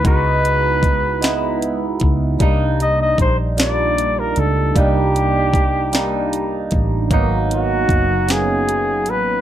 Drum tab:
HH |xxxxxx|xxxxxx|xxxxxx|xxxxxx|
SD |---o--|---o--|---o--|---o--|
BD |o-o--o|o-o---|o-o--o|o-o---|